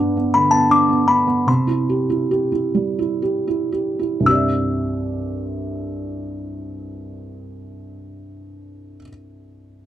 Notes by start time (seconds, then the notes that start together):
Already playing: G2 B3 D6
0.00 D4
0.17 B3
0.34 D3 B5
0.51 B3 A5
0.70 D4 D6
0.89 B3
1.07 D4 B5
1.27 B3
1.47 C3 C6
1.67 E4
1.89 G4
2.10 E4
2.31 G4
2.52 E4
2.75 G3
2.99 E4
3.22 G4
3.47 E4
3.72 G4
3.99 E4
4.20 C2 G2
4.26 C4 G4 E6
4.31 D5 E5